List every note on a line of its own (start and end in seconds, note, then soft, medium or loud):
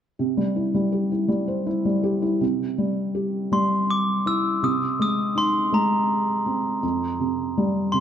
0.19 2.38 C3 soft
0.37 0.73 G3 soft
0.56 1.10 E4 soft
0.74 1.27 G3 medium
0.92 2.02 G4 soft
1.12 1.65 E4 soft
1.28 1.84 G3 medium
1.48 2.38 C5 soft
1.67 2.21 E4 soft
1.85 2.40 G3 soft
2.03 2.40 G4 medium
2.22 2.41 E4 soft
2.41 4.59 C3 medium
2.78 3.50 G3 soft
3.15 4.58 G4 soft
3.52 4.59 G3 soft
3.52 3.69 C6 medium
3.90 4.28 D6 medium
4.26 4.62 E4 soft
4.26 4.65 E6 medium
4.62 6.79 C3 medium
4.62 5.01 D#6 medium
4.99 5.71 G#3 soft
4.99 5.39 D#6 medium
5.35 6.79 D#4 medium
5.35 5.75 C6 medium
5.72 6.80 G#3 medium
5.72 6.52 A#5 medium
6.46 6.82 C4 medium
6.83 8.00 F2 medium
7.20 7.92 C3 soft
7.58 8.00 G3 medium
7.92 8.00 C3 soft
7.92 8.00 C6 medium